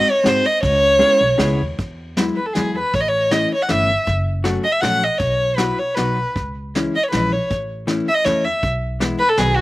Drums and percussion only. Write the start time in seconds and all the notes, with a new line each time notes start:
0.26 snare, ride
0.63 kick, ride
1.01 ride
1.39 snare, ride
1.78 kick, closed hi-hat
2.17 snare, closed hi-hat
2.55 snare, closed hi-hat
2.93 kick, closed hi-hat
3.31 snare, closed hi-hat
3.69 snare, closed hi-hat
4.06 kick, closed hi-hat
4.45 snare, closed hi-hat
4.83 snare, closed hi-hat
5.19 kick, closed hi-hat
5.58 snare, closed hi-hat
5.97 snare, closed hi-hat
6.36 kick, closed hi-hat
6.75 snare, closed hi-hat
7.12 snare, closed hi-hat
7.50 kick, closed hi-hat
7.88 snare, closed hi-hat
8.26 snare, closed hi-hat
8.63 kick, closed hi-hat
9.01 snare, closed hi-hat
9.37 snare, closed hi-hat